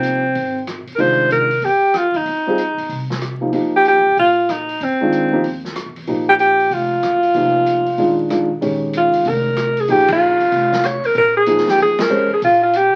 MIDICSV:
0, 0, Header, 1, 6, 480
1, 0, Start_track
1, 0, Tempo, 317628
1, 1495, Time_signature, 4, 2, 24, 8
1, 19576, End_track
2, 0, Start_track
2, 0, Title_t, "Alto saxophone"
2, 0, Program_c, 0, 65
2, 0, Note_on_c, 0, 60, 72
2, 1039, Note_off_c, 0, 60, 0
2, 1436, Note_on_c, 0, 70, 67
2, 1515, Note_on_c, 0, 72, 93
2, 1537, Note_off_c, 0, 70, 0
2, 1985, Note_off_c, 0, 72, 0
2, 1993, Note_on_c, 0, 70, 85
2, 2485, Note_on_c, 0, 67, 79
2, 2508, Note_off_c, 0, 70, 0
2, 2977, Note_on_c, 0, 65, 77
2, 3000, Note_off_c, 0, 67, 0
2, 3271, Note_on_c, 0, 63, 68
2, 3294, Note_off_c, 0, 65, 0
2, 4697, Note_off_c, 0, 63, 0
2, 5679, Note_on_c, 0, 67, 84
2, 5823, Note_off_c, 0, 67, 0
2, 5857, Note_on_c, 0, 67, 83
2, 6285, Note_off_c, 0, 67, 0
2, 6332, Note_on_c, 0, 65, 84
2, 6813, Note_on_c, 0, 63, 76
2, 6836, Note_off_c, 0, 65, 0
2, 7296, Note_on_c, 0, 60, 70
2, 7319, Note_off_c, 0, 63, 0
2, 8718, Note_off_c, 0, 60, 0
2, 9501, Note_on_c, 0, 67, 86
2, 9575, Note_off_c, 0, 67, 0
2, 9669, Note_on_c, 0, 67, 93
2, 10180, Note_on_c, 0, 65, 81
2, 10202, Note_off_c, 0, 67, 0
2, 12561, Note_off_c, 0, 65, 0
2, 13559, Note_on_c, 0, 65, 76
2, 14032, Note_on_c, 0, 70, 87
2, 14055, Note_off_c, 0, 65, 0
2, 14812, Note_on_c, 0, 68, 77
2, 14834, Note_off_c, 0, 70, 0
2, 14970, Note_on_c, 0, 67, 91
2, 14992, Note_off_c, 0, 68, 0
2, 15261, Note_off_c, 0, 67, 0
2, 15294, Note_on_c, 0, 65, 88
2, 16402, Note_on_c, 0, 73, 92
2, 16425, Note_off_c, 0, 65, 0
2, 16706, Note_on_c, 0, 70, 86
2, 16729, Note_off_c, 0, 73, 0
2, 16867, Note_off_c, 0, 70, 0
2, 16885, Note_on_c, 0, 70, 97
2, 17156, Note_off_c, 0, 70, 0
2, 17177, Note_on_c, 0, 68, 91
2, 17679, Note_on_c, 0, 67, 84
2, 17702, Note_off_c, 0, 68, 0
2, 17832, Note_off_c, 0, 67, 0
2, 17860, Note_on_c, 0, 68, 89
2, 18163, Note_on_c, 0, 70, 86
2, 18185, Note_off_c, 0, 68, 0
2, 18620, Note_off_c, 0, 70, 0
2, 18635, Note_on_c, 0, 68, 78
2, 18778, Note_off_c, 0, 68, 0
2, 18802, Note_on_c, 0, 65, 84
2, 19072, Note_off_c, 0, 65, 0
2, 19082, Note_on_c, 0, 65, 74
2, 19285, Note_on_c, 0, 67, 81
2, 19307, Note_off_c, 0, 65, 0
2, 19576, Note_off_c, 0, 67, 0
2, 19576, End_track
3, 0, Start_track
3, 0, Title_t, "Grand piano"
3, 0, Program_c, 1, 0
3, 0, Note_on_c, 1, 53, 49
3, 0, Note_on_c, 1, 58, 43
3, 0, Note_on_c, 1, 63, 44
3, 0, Note_on_c, 1, 67, 51
3, 301, Note_off_c, 1, 53, 0
3, 305, Note_off_c, 1, 63, 0
3, 306, Note_off_c, 1, 58, 0
3, 312, Note_off_c, 1, 67, 0
3, 1476, Note_on_c, 1, 51, 50
3, 1492, Note_on_c, 1, 56, 48
3, 1497, Note_on_c, 1, 62, 46
3, 1504, Note_on_c, 1, 65, 53
3, 2211, Note_off_c, 1, 51, 0
3, 2219, Note_off_c, 1, 56, 0
3, 2221, Note_off_c, 1, 62, 0
3, 2225, Note_off_c, 1, 65, 0
3, 3733, Note_on_c, 1, 55, 59
3, 3736, Note_on_c, 1, 60, 53
3, 3747, Note_on_c, 1, 65, 55
3, 3750, Note_on_c, 1, 68, 65
3, 3883, Note_off_c, 1, 55, 0
3, 3885, Note_off_c, 1, 60, 0
3, 3890, Note_off_c, 1, 65, 0
3, 3892, Note_off_c, 1, 68, 0
3, 5152, Note_on_c, 1, 53, 48
3, 5162, Note_on_c, 1, 58, 45
3, 5166, Note_on_c, 1, 63, 43
3, 5176, Note_on_c, 1, 67, 53
3, 5306, Note_off_c, 1, 53, 0
3, 5307, Note_off_c, 1, 58, 0
3, 5320, Note_off_c, 1, 63, 0
3, 5325, Note_off_c, 1, 67, 0
3, 5329, Note_on_c, 1, 53, 59
3, 5330, Note_on_c, 1, 58, 51
3, 5346, Note_on_c, 1, 63, 50
3, 5350, Note_on_c, 1, 67, 61
3, 6058, Note_off_c, 1, 53, 0
3, 6058, Note_off_c, 1, 58, 0
3, 6066, Note_off_c, 1, 63, 0
3, 6069, Note_off_c, 1, 67, 0
3, 7570, Note_on_c, 1, 51, 59
3, 7574, Note_on_c, 1, 56, 54
3, 7589, Note_on_c, 1, 62, 51
3, 7597, Note_on_c, 1, 65, 62
3, 8016, Note_off_c, 1, 51, 0
3, 8019, Note_off_c, 1, 56, 0
3, 8026, Note_off_c, 1, 62, 0
3, 8030, Note_off_c, 1, 65, 0
3, 8038, Note_on_c, 1, 53, 60
3, 8048, Note_on_c, 1, 58, 57
3, 8059, Note_on_c, 1, 63, 60
3, 8065, Note_on_c, 1, 67, 73
3, 8197, Note_off_c, 1, 53, 0
3, 8202, Note_off_c, 1, 58, 0
3, 8208, Note_off_c, 1, 63, 0
3, 8211, Note_off_c, 1, 67, 0
3, 9179, Note_on_c, 1, 53, 57
3, 9186, Note_on_c, 1, 58, 52
3, 9195, Note_on_c, 1, 63, 53
3, 9200, Note_on_c, 1, 67, 61
3, 10516, Note_off_c, 1, 53, 0
3, 10520, Note_off_c, 1, 58, 0
3, 10524, Note_off_c, 1, 63, 0
3, 10527, Note_off_c, 1, 67, 0
3, 11103, Note_on_c, 1, 53, 52
3, 11111, Note_on_c, 1, 58, 48
3, 11119, Note_on_c, 1, 63, 45
3, 11128, Note_on_c, 1, 67, 54
3, 11828, Note_off_c, 1, 53, 0
3, 11832, Note_off_c, 1, 58, 0
3, 11836, Note_off_c, 1, 63, 0
3, 11840, Note_off_c, 1, 67, 0
3, 12059, Note_on_c, 1, 56, 51
3, 12060, Note_on_c, 1, 51, 51
3, 12073, Note_on_c, 1, 62, 49
3, 12083, Note_on_c, 1, 65, 63
3, 12521, Note_off_c, 1, 51, 0
3, 12523, Note_off_c, 1, 56, 0
3, 12529, Note_off_c, 1, 62, 0
3, 12535, Note_off_c, 1, 65, 0
3, 12544, Note_on_c, 1, 51, 56
3, 12546, Note_on_c, 1, 56, 50
3, 12552, Note_on_c, 1, 62, 51
3, 12560, Note_on_c, 1, 65, 65
3, 12818, Note_off_c, 1, 51, 0
3, 12820, Note_off_c, 1, 56, 0
3, 12822, Note_off_c, 1, 62, 0
3, 12826, Note_off_c, 1, 65, 0
3, 13013, Note_on_c, 1, 51, 54
3, 13021, Note_on_c, 1, 56, 52
3, 13024, Note_on_c, 1, 61, 56
3, 13031, Note_on_c, 1, 67, 64
3, 14352, Note_off_c, 1, 51, 0
3, 14356, Note_off_c, 1, 56, 0
3, 14357, Note_off_c, 1, 61, 0
3, 14361, Note_off_c, 1, 67, 0
3, 14938, Note_on_c, 1, 53, 52
3, 14949, Note_on_c, 1, 58, 45
3, 14954, Note_on_c, 1, 63, 46
3, 14963, Note_on_c, 1, 68, 54
3, 15663, Note_off_c, 1, 53, 0
3, 15668, Note_off_c, 1, 58, 0
3, 15671, Note_off_c, 1, 63, 0
3, 15675, Note_off_c, 1, 68, 0
3, 17329, Note_on_c, 1, 53, 56
3, 17329, Note_on_c, 1, 58, 53
3, 17339, Note_on_c, 1, 63, 51
3, 17343, Note_on_c, 1, 68, 67
3, 18055, Note_off_c, 1, 53, 0
3, 18055, Note_off_c, 1, 58, 0
3, 18060, Note_off_c, 1, 63, 0
3, 18062, Note_off_c, 1, 68, 0
3, 18277, Note_on_c, 1, 56, 67
3, 18288, Note_on_c, 1, 61, 61
3, 18288, Note_on_c, 1, 67, 56
3, 18295, Note_on_c, 1, 72, 70
3, 18560, Note_off_c, 1, 56, 0
3, 18565, Note_off_c, 1, 61, 0
3, 18565, Note_off_c, 1, 67, 0
3, 18569, Note_off_c, 1, 72, 0
3, 19576, End_track
4, 0, Start_track
4, 0, Title_t, "Upright bass"
4, 0, Program_c, 2, 32
4, 0, Note_on_c, 2, 36, 70
4, 487, Note_off_c, 2, 36, 0
4, 536, Note_on_c, 2, 32, 76
4, 1267, Note_off_c, 2, 32, 0
4, 1488, Note_on_c, 2, 36, 77
4, 1938, Note_off_c, 2, 36, 0
4, 1973, Note_on_c, 2, 48, 68
4, 2420, Note_off_c, 2, 48, 0
4, 2451, Note_on_c, 2, 41, 78
4, 3184, Note_off_c, 2, 41, 0
4, 3233, Note_on_c, 2, 39, 63
4, 3393, Note_off_c, 2, 39, 0
4, 3402, Note_on_c, 2, 41, 73
4, 4140, Note_off_c, 2, 41, 0
4, 4192, Note_on_c, 2, 40, 59
4, 4358, Note_off_c, 2, 40, 0
4, 4369, Note_on_c, 2, 36, 75
4, 5284, Note_off_c, 2, 36, 0
4, 5330, Note_on_c, 2, 41, 74
4, 5928, Note_off_c, 2, 41, 0
4, 5979, Note_on_c, 2, 39, 54
4, 6127, Note_off_c, 2, 39, 0
4, 6141, Note_on_c, 2, 40, 57
4, 6288, Note_off_c, 2, 40, 0
4, 6300, Note_on_c, 2, 46, 76
4, 7211, Note_off_c, 2, 46, 0
4, 7262, Note_on_c, 2, 41, 75
4, 8172, Note_off_c, 2, 41, 0
4, 8217, Note_on_c, 2, 39, 75
4, 8813, Note_off_c, 2, 39, 0
4, 8856, Note_on_c, 2, 41, 52
4, 9006, Note_off_c, 2, 41, 0
4, 9020, Note_on_c, 2, 40, 61
4, 9168, Note_off_c, 2, 40, 0
4, 9180, Note_on_c, 2, 34, 79
4, 10092, Note_off_c, 2, 34, 0
4, 10133, Note_on_c, 2, 29, 82
4, 10583, Note_off_c, 2, 29, 0
4, 10627, Note_on_c, 2, 30, 64
4, 11070, Note_off_c, 2, 30, 0
4, 11100, Note_on_c, 2, 29, 77
4, 12013, Note_off_c, 2, 29, 0
4, 12059, Note_on_c, 2, 34, 72
4, 12972, Note_off_c, 2, 34, 0
4, 13023, Note_on_c, 2, 34, 77
4, 13753, Note_off_c, 2, 34, 0
4, 13987, Note_on_c, 2, 29, 85
4, 14895, Note_off_c, 2, 29, 0
4, 14944, Note_on_c, 2, 34, 83
4, 15672, Note_off_c, 2, 34, 0
4, 15898, Note_on_c, 2, 29, 87
4, 16628, Note_off_c, 2, 29, 0
4, 16847, Note_on_c, 2, 34, 88
4, 17581, Note_off_c, 2, 34, 0
4, 17803, Note_on_c, 2, 41, 89
4, 18537, Note_off_c, 2, 41, 0
4, 18768, Note_on_c, 2, 34, 83
4, 19499, Note_off_c, 2, 34, 0
4, 19576, End_track
5, 0, Start_track
5, 0, Title_t, "Muted upright bass strokes"
5, 1316, Note_on_c, 9, 29, 34
5, 1467, Note_off_c, 9, 29, 0
5, 13814, Note_on_c, 9, 29, 36
5, 13965, Note_off_c, 9, 29, 0
5, 15734, Note_on_c, 9, 29, 35
5, 15885, Note_off_c, 9, 29, 0
5, 16682, Note_on_c, 9, 29, 38
5, 16834, Note_off_c, 9, 29, 0
5, 17633, Note_on_c, 9, 29, 36
5, 17784, Note_off_c, 9, 29, 0
5, 18594, Note_on_c, 9, 29, 39
5, 18745, Note_off_c, 9, 29, 0
5, 19576, End_track
6, 0, Start_track
6, 0, Title_t, "Drums"
6, 45, Note_on_c, 9, 42, 40
6, 196, Note_off_c, 9, 42, 0
6, 530, Note_on_c, 9, 46, 34
6, 681, Note_off_c, 9, 46, 0
6, 1013, Note_on_c, 9, 42, 45
6, 1017, Note_on_c, 9, 37, 51
6, 1164, Note_off_c, 9, 42, 0
6, 1168, Note_off_c, 9, 37, 0
6, 1318, Note_on_c, 9, 46, 34
6, 1469, Note_off_c, 9, 46, 0
6, 1487, Note_on_c, 9, 46, 35
6, 1638, Note_off_c, 9, 46, 0
6, 1968, Note_on_c, 9, 42, 39
6, 2119, Note_off_c, 9, 42, 0
6, 2276, Note_on_c, 9, 46, 33
6, 2427, Note_off_c, 9, 46, 0
6, 2445, Note_on_c, 9, 46, 38
6, 2596, Note_off_c, 9, 46, 0
6, 2927, Note_on_c, 9, 42, 45
6, 2932, Note_on_c, 9, 37, 50
6, 3078, Note_off_c, 9, 42, 0
6, 3083, Note_off_c, 9, 37, 0
6, 3232, Note_on_c, 9, 46, 33
6, 3383, Note_off_c, 9, 46, 0
6, 3410, Note_on_c, 9, 46, 35
6, 3561, Note_off_c, 9, 46, 0
6, 3895, Note_on_c, 9, 42, 41
6, 4047, Note_off_c, 9, 42, 0
6, 4204, Note_on_c, 9, 46, 31
6, 4355, Note_off_c, 9, 46, 0
6, 4375, Note_on_c, 9, 46, 36
6, 4527, Note_off_c, 9, 46, 0
6, 4689, Note_on_c, 9, 38, 42
6, 4840, Note_off_c, 9, 38, 0
6, 4854, Note_on_c, 9, 42, 40
6, 4858, Note_on_c, 9, 37, 53
6, 5005, Note_off_c, 9, 42, 0
6, 5009, Note_off_c, 9, 37, 0
6, 5329, Note_on_c, 9, 46, 36
6, 5480, Note_off_c, 9, 46, 0
6, 5815, Note_on_c, 9, 42, 41
6, 5967, Note_off_c, 9, 42, 0
6, 6305, Note_on_c, 9, 46, 36
6, 6456, Note_off_c, 9, 46, 0
6, 6782, Note_on_c, 9, 42, 44
6, 6786, Note_on_c, 9, 37, 54
6, 6933, Note_off_c, 9, 42, 0
6, 6937, Note_off_c, 9, 37, 0
6, 7084, Note_on_c, 9, 46, 33
6, 7235, Note_off_c, 9, 46, 0
6, 7264, Note_on_c, 9, 46, 37
6, 7415, Note_off_c, 9, 46, 0
6, 7743, Note_on_c, 9, 42, 41
6, 7894, Note_off_c, 9, 42, 0
6, 8218, Note_on_c, 9, 46, 37
6, 8369, Note_off_c, 9, 46, 0
6, 8533, Note_on_c, 9, 38, 27
6, 8684, Note_off_c, 9, 38, 0
6, 8698, Note_on_c, 9, 42, 46
6, 8703, Note_on_c, 9, 37, 55
6, 8849, Note_off_c, 9, 42, 0
6, 8854, Note_off_c, 9, 37, 0
6, 9006, Note_on_c, 9, 46, 31
6, 9157, Note_off_c, 9, 46, 0
6, 9176, Note_on_c, 9, 46, 35
6, 9327, Note_off_c, 9, 46, 0
6, 9655, Note_on_c, 9, 42, 44
6, 9806, Note_off_c, 9, 42, 0
6, 9969, Note_on_c, 9, 46, 31
6, 10120, Note_off_c, 9, 46, 0
6, 10142, Note_on_c, 9, 46, 39
6, 10293, Note_off_c, 9, 46, 0
6, 10618, Note_on_c, 9, 42, 45
6, 10622, Note_on_c, 9, 37, 53
6, 10769, Note_off_c, 9, 42, 0
6, 10773, Note_off_c, 9, 37, 0
6, 10924, Note_on_c, 9, 46, 32
6, 11075, Note_off_c, 9, 46, 0
6, 11095, Note_on_c, 9, 46, 36
6, 11246, Note_off_c, 9, 46, 0
6, 11577, Note_on_c, 9, 42, 42
6, 11728, Note_off_c, 9, 42, 0
6, 11880, Note_on_c, 9, 46, 30
6, 12031, Note_off_c, 9, 46, 0
6, 12056, Note_on_c, 9, 46, 35
6, 12207, Note_off_c, 9, 46, 0
6, 12544, Note_on_c, 9, 42, 45
6, 12549, Note_on_c, 9, 37, 56
6, 12695, Note_off_c, 9, 42, 0
6, 12700, Note_off_c, 9, 37, 0
6, 13025, Note_on_c, 9, 46, 42
6, 13176, Note_off_c, 9, 46, 0
6, 13499, Note_on_c, 9, 42, 45
6, 13650, Note_off_c, 9, 42, 0
6, 13802, Note_on_c, 9, 46, 38
6, 13953, Note_off_c, 9, 46, 0
6, 13972, Note_on_c, 9, 46, 43
6, 14123, Note_off_c, 9, 46, 0
6, 14453, Note_on_c, 9, 42, 52
6, 14458, Note_on_c, 9, 37, 62
6, 14605, Note_off_c, 9, 42, 0
6, 14609, Note_off_c, 9, 37, 0
6, 14762, Note_on_c, 9, 46, 37
6, 14913, Note_off_c, 9, 46, 0
6, 14929, Note_on_c, 9, 46, 43
6, 15080, Note_off_c, 9, 46, 0
6, 15237, Note_on_c, 9, 51, 74
6, 15247, Note_on_c, 9, 36, 76
6, 15388, Note_off_c, 9, 51, 0
6, 15398, Note_off_c, 9, 36, 0
6, 15721, Note_on_c, 9, 46, 37
6, 15872, Note_off_c, 9, 46, 0
6, 15896, Note_on_c, 9, 46, 44
6, 16047, Note_off_c, 9, 46, 0
6, 16207, Note_on_c, 9, 38, 51
6, 16358, Note_off_c, 9, 38, 0
6, 16373, Note_on_c, 9, 42, 52
6, 16377, Note_on_c, 9, 37, 60
6, 16524, Note_off_c, 9, 42, 0
6, 16528, Note_off_c, 9, 37, 0
6, 16679, Note_on_c, 9, 46, 39
6, 16830, Note_off_c, 9, 46, 0
6, 16848, Note_on_c, 9, 46, 41
6, 17000, Note_off_c, 9, 46, 0
6, 17322, Note_on_c, 9, 42, 49
6, 17473, Note_off_c, 9, 42, 0
6, 17490, Note_on_c, 9, 38, 30
6, 17631, Note_on_c, 9, 46, 36
6, 17641, Note_off_c, 9, 38, 0
6, 17649, Note_on_c, 9, 38, 40
6, 17783, Note_off_c, 9, 46, 0
6, 17800, Note_off_c, 9, 38, 0
6, 17803, Note_on_c, 9, 46, 45
6, 17954, Note_off_c, 9, 46, 0
6, 18112, Note_on_c, 9, 51, 67
6, 18117, Note_on_c, 9, 38, 76
6, 18263, Note_off_c, 9, 51, 0
6, 18268, Note_off_c, 9, 38, 0
6, 18766, Note_on_c, 9, 46, 44
6, 18917, Note_off_c, 9, 46, 0
6, 19242, Note_on_c, 9, 42, 49
6, 19393, Note_off_c, 9, 42, 0
6, 19576, End_track
0, 0, End_of_file